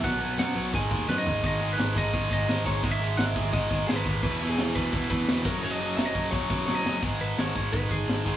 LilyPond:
<<
  \new Staff \with { instrumentName = "Lead electric guitar" } { \time 4/4 \key gis \minor \tempo 4 = 172 fis''4 fis''4 gis''4 b'16 dis''8. | dis''8. b'8. dis''4 dis''4 cis''8 | dis''16 e''8. fis''16 e''8. dis''4 gis'16 b'8. | b'8. gis'8. b'4 b'4 ais'8 |
cis''16 dis''8. e''16 dis''8. cis''4 cis''16 dis''8. | r8 b'8 cis''4 b'8 gis'4. | }
  \new Staff \with { instrumentName = "Distorted electric guitar" } { \clef bass \time 4/4 \key gis \minor <b, fis b>2 <gis, dis gis>2 | <gis, dis gis>8 <gis, dis gis>8 <gis, dis gis>8 <gis, dis gis>8 <gis, dis gis>8 <gis, dis gis>8 <gis, dis gis>8 <gis, dis gis>8 | <gis, dis gis>8 <gis, dis gis>8 <gis, dis gis>8 <gis, dis gis>8 <gis, dis gis>8 <gis, dis gis>8 <gis, dis gis>8 <gis, dis gis>8 | <e, b, e>8 <e, b, e>8 <e, b, e>8 <e, b, e>8 <e, b, e>8 <e, b, e>8 <e, b, e>8 <fis, cis fis>8 |
<fis, cis fis>8 <fis, cis fis>8 <fis, cis fis>8 <fis, cis fis>8 <fis, cis fis>8 <fis, cis fis>8 <fis, cis fis>8 <fis, cis fis>8 | <gis, dis gis>2.~ <gis, dis gis>8 <gis, dis gis>8 | }
  \new Staff \with { instrumentName = "Overdriven electric guitar" } { \clef bass \time 4/4 \key gis \minor <b, fis b>8 <b, fis b>8 <b, fis b>8 <b, fis b>8 <gis, dis gis>8 <gis, dis gis>8 <gis, dis gis>8 <gis, dis gis>8 | <gis, dis gis>8 <gis, dis gis>8 <gis, dis gis>8 <gis, dis gis>8 <gis, dis gis>8 <gis, dis gis>8 <gis, dis gis>8 <gis, dis gis>8 | <gis, dis gis>8 <gis, dis gis>8 <gis, dis gis>8 <gis, dis gis>8 <gis, dis gis>8 <gis, dis gis>8 <gis, dis gis>8 <gis, dis gis>8 | <e, b, e>8 <e, b, e>8 <e, b, e>8 <e, b, e>8 <e, b, e>8 <e, b, e>8 <e, b, e>8 <fis, cis fis>8 |
<fis, cis fis>8 <fis, cis fis>8 <fis, cis fis>8 <fis, cis fis>8 <fis, cis fis>8 <fis, cis fis>8 <fis, cis fis>8 <fis, cis fis>8 | <gis, dis gis>4 <gis, dis gis>8 <gis, dis gis>8 <gis, dis gis>4 <gis, dis gis>8 <gis, dis gis>8 | }
  \new Staff \with { instrumentName = "Picked electric bass" } { \clef bass \time 4/4 \key gis \minor b,,8 b,,8 fis,8 b,,8 gis,,8 dis,8 fis,8 gis,,8 | gis,,4 gis,,8 gis,,8 gis,,8 gis,,8 gis,,8 gis,,8 | gis,,4 gis,,8 gis,,8 gis,,8 gis,,8 gis,,8 gis,,8 | e,,4 e,,8 e,,8 e,,8 e,,8 e,,8 fis,,8 |
fis,,4 fis,,8 fis,,8 fis,,8 fis,,8 fis,,8 fis,,8 | gis,,8 gis,,8 gis,,8 gis,,8 gis,,8 gis,,8 gis,,8 gis,,8 | }
  \new DrumStaff \with { instrumentName = "Drums" } \drummode { \time 4/4 <cymc bd>4 <cymc sn>4 <cymc bd>8 bd8 sn8 tomfh8 | <hho bd>4 <hho sn>8 bd8 <hho bd>8 bd8 <hho sn>8 bd8 | <hho bd>4 <hho sn>8 bd8 <hho bd>8 bd8 <hho sn>8 bd8 | <hho bd>4 <hho sn>8 bd8 <hho bd>8 bd8 <hho sn>8 <cymc bd>8 |
r4 <hho sn>8 bd8 <hho bd>8 bd8 sn8 sn8 | <hho bd>4 <hho sn>8 bd8 <hho bd>8 bd8 <hho sn>8 bd8 | }
>>